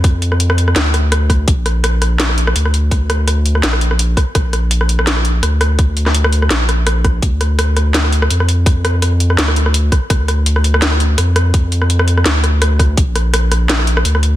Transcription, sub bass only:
X:1
M:4/4
L:1/8
Q:"Swing 16ths" 1/4=167
K:Dm
V:1 name="Sub bass" clef=bass
F,,4 D,,4 | B,,,6 D,,2- | D,,4 B,,,3 z | B,,,6 D,,2- |
D,,4 B,,,4 | D,,6 F,,2- | F,,4 D,,3 z | D,,6 F,,2- |
F,,4 D,,4 | B,,,6 D,,2 |]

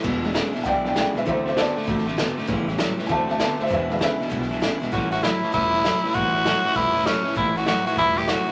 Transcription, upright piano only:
X:1
M:4/4
L:1/8
Q:"Swing" 1/4=197
K:Amix
V:1 name="Upright piano"
z4 [dfg] [dg] [dg] [Be] | [=ce] [ce] [Ad]2 z4 | z4 [e^ga] [ea] [ea] [=ce] | [Be] [Be] [Be]2 z4 |
z8 | z8 | z8 |]
V:2 name="Upright piano" clef=bass
z [F,^G,D]3 z2 [F,G,D] z | [E,F,=C] z6 z | [C,G,B,]3 z [E,F,=C] z3 | z [F,^G,D]3 z4 |
z8 | z8 | z8 |]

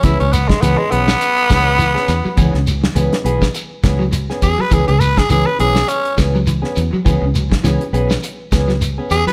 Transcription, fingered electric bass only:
X:1
M:4/4
L:1/16
Q:"Swing 16ths" 1/4=102
K:C#m
V:1 name="Fingered electric bass" clef=bass
C,, C,,3 C,, z B,,,2 z2 C,,4 E,, z | C,, C,,3 C,, z B,,,2 z2 C,,4 E,, z | C,, C,,3 C,, z B,,,2 z2 C,,4 E,, z | C,, C,,3 C,, z B,,,2 z2 C,,4 E,, z |]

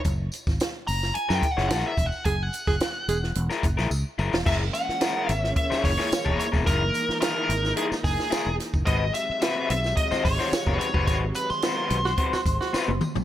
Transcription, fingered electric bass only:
X:1
M:4/4
L:1/16
Q:1/4=109
K:Gb
V:1 name="Fingered electric bass" clef=bass
G,,,2 z A,,, z2 G,,,2 z G,, z G,,, B,,, z _F,,, z | G,,,2 z G,,, z2 _F,,,2 F,,, z G,,, B,,, D,, z G,,, F,,, | G,,,2 z4 A,,,2 z2 G,,, z2 _F,,, z F,,, | G,,,2 z4 A,,,2 z2 G,,, z2 _F,,, z G,,, |
A,,,2 z4 =B,,,2 z2 A,,, z2 G,,, z G,,, | A,,,2 z4 =B,,,2 z2 A,,, z2 G,,, z B,,, |]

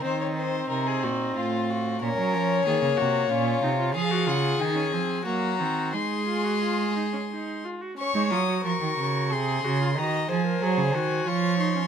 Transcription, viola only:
X:1
M:3/4
L:1/16
Q:1/4=91
K:Bbphr
V:1 name="Viola"
=C12 | D4 B,4 D2 E F | [K:Db] A G F2 E D C2 B,2 C2 | E2 F G F2 E D E2 F G |
D E F G4- G A2 G F | G2 A B A2 G2 F2 E D |]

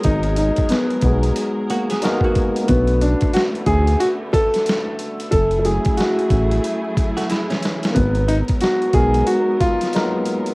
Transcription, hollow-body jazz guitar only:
X:1
M:4/4
L:1/16
Q:"Swing 16ths" 1/4=91
K:F#
V:1 name="Hollow-body jazz guitar"
z8 z2 [A,F] [B,G]2 [A,F]3 | z16 | z8 z3 [=A,F] [G,=E] [=E,C]3 | z16 |]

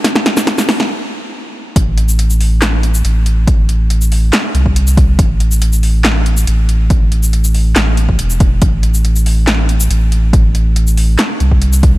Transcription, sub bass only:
X:1
M:4/4
L:1/8
Q:1/4=140
K:Am
V:1 name="Sub bass" clef=bass
z8 | A,,,6 A,,,2- | A,,,4 z C,,3 | A,,,6 A,,,2- |
A,,,4 A,,,2 E,,,2 | A,,,6 A,,,2- | A,,,4 z C,,3 |]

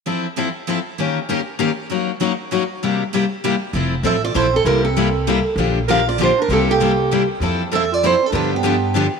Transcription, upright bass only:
X:1
M:3/4
L:1/8
Q:"Swing" 1/4=196
K:F
V:1 name="Upright bass" clef=bass
z6 | z6 | z6 | z6 |
F,,,2 A,,,2 B,,,2 | C,,6 | B,,,6 | C,,6 |
F,,6 | G,,6 |]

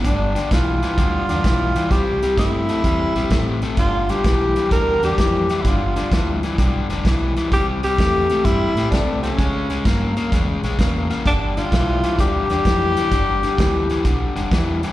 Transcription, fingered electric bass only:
X:1
M:4/4
L:1/8
Q:"Swing" 1/4=128
K:Gmix
V:1 name="Fingered electric bass" clef=bass
G,,,2 B,,,2 D,, E,, B,,,2 | C,,2 G,,2 E,, _B,,, A,,,2 | G,,,2 B,,,2 D,, E,, F,,2 | G,,,2 D,,2 B,,, F,,, B,,,2 |
C,,2 E,,2 G,, A,, C,,2 | ^C,,2 G,,2 E,, ^A,,, E,,2 | G,,,2 B,,,2 D,, E,, F,,2 | G,,,2 D,,2 B,,, F,,, E,,2 |]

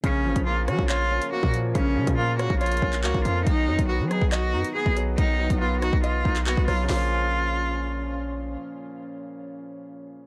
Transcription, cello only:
X:1
M:4/4
L:1/8
Q:1/4=140
K:Bbphr
V:1 name="Cello"
D2 F G F2 G z | D2 F G F2 G F | ^D2 ^F A F2 A z | ^D2 F ^F =F2 ^F =F |
F6 z2 | z8 |]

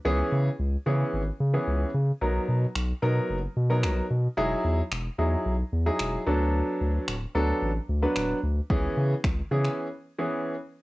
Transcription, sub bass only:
X:1
M:4/4
L:1/8
Q:1/4=111
K:C#dor
V:1 name="Sub bass" clef=bass
C,, C, C,, C, G,,, C, C,, C, | B,,, B,, B,,, B,, F,,, B,, B,,, B,, | E,,, E,, E,,, E,, B,,, E,, E,,, =D,,- | =D,, D,, =D,,, D,, =A,,, D,, D,,, D,, |
C,, C, C,, C, z4 |]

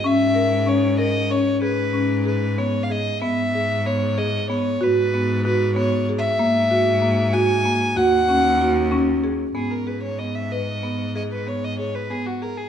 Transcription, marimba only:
X:1
M:5/8
L:1/8
Q:1/4=95
K:G#m
V:1 name="Marimba"
C A C A C | G C G B, G | B, G B, G B, | F B, F B, G |
A, F A, F A, | F C F C G | B, G B, B B, | G B, G B, G |]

